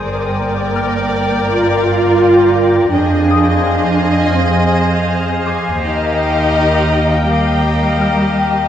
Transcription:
0.03 G1 A#4 D5 G5
0.39 A#3
0.75 F6
1.49 F4
2.93 F2 D4 G#4 C5 D#5 F5 G#5
3.30 D#6
4.38 C4
5.46 D6
5.83 D#2 D#4 G4 A#4 D#5 G5 D6
6.57 A#5
7.28 G3 G4 D#5
8.01 F6

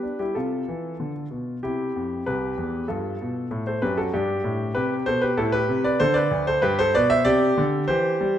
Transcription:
Already playing: G4 B4
0.03 D4
0.19 G3 E4 G4
0.35 C3 F4 A4
0.68 E3
1.00 D3
1.31 B2
1.63 C3 E4 G4
1.96 F2
2.26 C2 G4 B4
2.57 E2
2.88 G2 F4 A4
3.21 B2
3.51 A2
3.67 A4 C5
3.82 F#2 G4 B4
3.97 F#4 A4
4.14 G2 D4 G4
4.44 A2
4.75 C3 G4 B4
5.06 B2 A4 C5
5.22 G4 B4
5.38 A2 E4 A4
5.52 G4 B4
5.69 C3
5.84 B4 D5
6.00 D3 A4 C5
6.14 B4 D5
6.31 D2
6.47 A4 C5
6.62 G2 G4 B4
6.79 A4 C5
6.95 B2 B4 D5
7.10 C5 E5
7.25 C3 G4 D5
7.58 D3
7.88 E3 G4 C5
8.21 G3

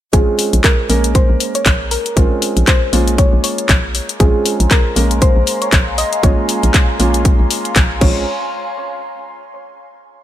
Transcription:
0.13 A#1 G#3 C4 C#4 F4 G#4, kick, closed hi-hat
0.39 open hi-hat
0.53 A#1, closed hi-hat
0.64 A#4, kick, clap, closed hi-hat
0.89 A#1 G#3 A#3 C#4 A#4, open hi-hat
1.04 closed hi-hat
1.15 C5, kick, closed hi-hat
1.30 A#1
1.40 open hi-hat
1.55 C#5, closed hi-hat
1.66 A#1, kick, clap, closed hi-hat
1.91 A#4, open hi-hat
2.06 closed hi-hat
2.16 A#1 G#3 C4 C#4 F4, kick, closed hi-hat
2.42 open hi-hat
2.57 A#1, closed hi-hat
2.67 C5, kick, clap, closed hi-hat
2.92 A#1 G#3 A#3 C#4 F4, open hi-hat
3.08 closed hi-hat
3.18 C#5, kick, closed hi-hat
3.33 A#1
3.44 C#5, open hi-hat
3.58 closed hi-hat
3.69 A#1, kick, clap, closed hi-hat
3.95 open hi-hat
4.09 closed hi-hat
4.20 A#1 G#3 C4 C#4 F4 G#4 F5 G#5 A#5 C6, kick, closed hi-hat
4.46 open hi-hat
4.60 A#1, closed hi-hat
4.71 A#4, kick, clap, closed hi-hat
4.96 A#1 G#3 A#3 C#4 A#4, open hi-hat
5.11 closed hi-hat
5.22 C5, kick, closed hi-hat
5.36 A#1
5.47 open hi-hat
5.62 C#5, closed hi-hat
5.73 A#1, kick, clap, closed hi-hat
5.98 D#5, open hi-hat
6.13 closed hi-hat
6.23 A#1 G#3 A#3 C#4 F4 C#5, kick, closed hi-hat
6.49 open hi-hat
6.63 A#1, closed hi-hat
6.74 kick, clap, closed hi-hat
6.99 A#1 G#3 A#3 C#4 F4, open hi-hat
7.14 closed hi-hat
7.25 kick, closed hi-hat
7.40 A#1
7.51 open hi-hat
7.65 closed hi-hat
7.76 A#1, kick, clap, closed hi-hat
8.01 A#1 G#3 C4 C#4 F4 C#5 F5 G#5 A#5 C6, kick, crash

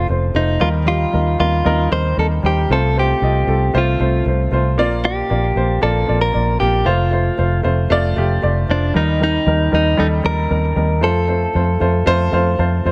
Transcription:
Already playing: A3 F4 G4 C5 D#5
0.09 F1 A3 F4 C5
0.34 F1 A3 D#4 F4 C5
0.60 D#2 D#3 G3 D#4 F4 A#4
0.85 G3 D#4 F4 G4
1.13 D#2 G3 D#4 A#4
1.39 D#2 G3 D#4 F4 A#4
1.65 D#2 G3 D#4 A#4
1.91 D#2 G3 D#4 A#4 C5
2.17 D#2 G3 D#4 A4 A#4
2.43 D#2 G3 D#4 G4 C5
2.69 C2 C3 A3 F4 A4 C5
2.96 A3 F4 G4 C5
3.22 C2 A3 F4 D#5
3.47 C2 A3 F4 A4
3.74 C2 A3 F4 C5
3.78 F4
4.00 C2 A3 F4 C5
4.26 C2 A3 F4 C5
4.51 C2 A3 F4 C5
4.78 A#1 A#2 A#3 F4 D5
5.04 A#3 F4 G4 D5
5.30 A#1 A#3 F4 D5
5.56 A#1 A#3 F4 C5
5.82 A#1 A#3 F4 A4 D5
6.08 A#1 A#3 F4 D5
6.21 A#4
6.33 A#1 A#3 F4 D5
6.60 A#1 A#3 F4 G4
6.85 F1 A3 F4 C5
7.11 A3 F4 C5
7.37 F1 A3 F4 C5
7.63 F1 A3 F4 C5
7.90 F1 A3 F4 D5
8.16 F1 A3 F4 G4
8.42 F1 A3 F4 D5
8.68 F1 A3 D4 F4 C5
8.94 D#2 D#3 G3 D#4 A#4
9.20 G3 D#4 A#4
9.46 D#2 G3 D#4 A#4
9.72 D#2 G3 D#4 A#4
9.97 D#2 G3 D#4 A4
10.24 D#2 G3 D#4 A#4
10.50 D#2 G3 D#4 A#4
10.76 D#2 G3 D#4 A#4
11.01 F2 A3 F4 A4 C5
11.28 A3 F4 C5
11.54 F2 A3 F4 C5
11.80 F2 A3 F4 C5
12.06 F2 A3 F4 C5
12.32 F2 A3 F4 C5 F5
12.59 F2 A3 F4 C5 A5
12.85 F2 A3 F4 C5

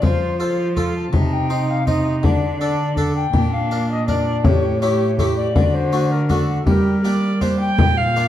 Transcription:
0.02 F3 F4 C5, frame drum
0.40 F4 A4 C5
0.76 F4 A4, frame drum
0.96 A5
1.13 C3 D#4, frame drum
1.32 G5
1.50 D#4 C5
1.69 F5
1.86 D#4 C5 D#5, frame drum
2.23 D3 D4 D5, frame drum
2.61 D4 A4 D5
2.97 D4 A4, frame drum
3.15 G5
3.34 A#2 D4, frame drum
3.52 F5
3.71 D4 A#4
3.89 D#5
4.07 D4 A#4 D5, frame drum
4.44 A2 G4 C#5, frame drum
4.81 A3 E4 G4 C#5
5.18 A3 E4 G4 A4, frame drum
5.36 D5
5.55 D3 F#4, frame drum
5.73 C5
5.93 A3 D4 F#4
6.11 A#4
6.29 A3 D4 F#4 A4, frame drum
6.66 G3 G4 A#4, frame drum
7.05 A#3 D4 G4 D5
7.41 A#3 D4 G4 C5, frame drum
7.60 G5
7.78 A#2, frame drum
7.97 F5
8.16 A#3 D4 F4

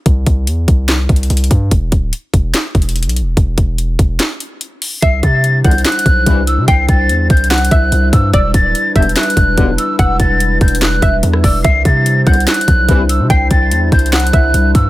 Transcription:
0.06 C2, kick, closed hi-hat
0.26 C2, kick, closed hi-hat
0.47 E2, closed hi-hat
0.68 C2, kick, closed hi-hat
0.88 snare, clap, closed hi-hat
1.09 C2, kick, closed hi-hat
1.16 closed hi-hat
1.23 closed hi-hat
1.30 C2, closed hi-hat
1.37 closed hi-hat
1.44 closed hi-hat
1.51 G2, kick, closed hi-hat
1.71 E1, kick, closed hi-hat
1.92 D1, kick, closed hi-hat
2.13 closed hi-hat
2.34 E1, kick, closed hi-hat
2.54 snare, clap, closed hi-hat
2.75 E1, kick, closed hi-hat
2.82 closed hi-hat
2.89 closed hi-hat
2.96 closed hi-hat
3.03 B1, closed hi-hat
3.09 closed hi-hat
3.16 closed hi-hat
3.21 E1
3.37 E1, kick, closed hi-hat
3.58 E1, kick, closed hi-hat
3.78 closed hi-hat
3.99 E1, kick, closed hi-hat
4.20 snare, clap, closed hi-hat
4.40 closed hi-hat
4.61 closed hi-hat
4.82 open hi-hat
5.02 C2 G3 D4 E4 C5 E5 C7, kick, closed hi-hat
5.23 C3 A6, kick, closed hi-hat
5.44 closed hi-hat
5.64 G1 C2 E2 D3 F#5 G6, kick, closed hi-hat
5.71 closed hi-hat
5.78 closed hi-hat
5.85 F#6, snare, clap, closed hi-hat
5.92 closed hi-hat
5.99 closed hi-hat
6.06 B1, kick, closed hi-hat
6.26 C2 G2 E3, kick, closed hi-hat
6.47 E6, closed hi-hat
6.58 C3
6.68 C2 G5 C7, kick, closed hi-hat
6.89 C2 A6, kick, closed hi-hat
7.09 E2, closed hi-hat
7.30 C2 G6, kick, closed hi-hat
7.37 closed hi-hat
7.44 closed hi-hat
7.50 F#5 F#6, snare, clap, closed hi-hat
7.58 closed hi-hat
7.65 closed hi-hat
7.71 C2 E5, kick, closed hi-hat
7.92 C2, closed hi-hat
8.13 G2 E6, kick, closed hi-hat
8.33 E1 D4 E4 B4 D5 E6, kick, closed hi-hat
8.54 D1 A6, kick, closed hi-hat
8.75 closed hi-hat
8.96 E1 B1 G2 D3 E5 G6, kick, closed hi-hat
9.02 closed hi-hat
9.09 closed hi-hat
9.16 F#6, snare, clap, closed hi-hat
9.23 closed hi-hat
9.30 closed hi-hat
9.37 E1, kick, closed hi-hat
9.58 E1 B1 G2 D3, kick, closed hi-hat
9.78 E6, closed hi-hat
9.99 E1 F#5 E6, kick, closed hi-hat
10.20 E1 A6, kick, closed hi-hat
10.40 closed hi-hat
10.61 E1 G6, kick, closed hi-hat
10.68 closed hi-hat
10.75 closed hi-hat
10.81 F#6, snare, clap, closed hi-hat
11.02 E1 E5, kick, closed hi-hat
11.23 E2, closed hi-hat
11.33 cross-stick
11.43 E1 D5 E6, kick, open hi-hat
11.64 C2 D4 C5 E5 C7, kick, closed hi-hat
11.85 C3 A6, kick, closed hi-hat
12.06 closed hi-hat
12.26 G1 C2 E2 D3 F#5 G6, kick, closed hi-hat
12.34 closed hi-hat
12.40 closed hi-hat
12.47 F#6, snare, clap, closed hi-hat
12.54 closed hi-hat
12.61 closed hi-hat
12.68 B1, kick, closed hi-hat
12.89 C2 G2 E3, kick, closed hi-hat
13.09 E6, closed hi-hat
13.20 C3
13.30 C2 G5 C7, kick, closed hi-hat
13.51 C2 A6, kick, closed hi-hat
13.71 E2, closed hi-hat
13.92 C2 G6, kick, closed hi-hat
13.99 closed hi-hat
14.06 closed hi-hat
14.12 F#5 F#6, snare, clap, closed hi-hat
14.20 closed hi-hat
14.27 closed hi-hat
14.33 C2 E5, kick, closed hi-hat
14.54 C2, closed hi-hat
14.74 G2 E6, kick, closed hi-hat

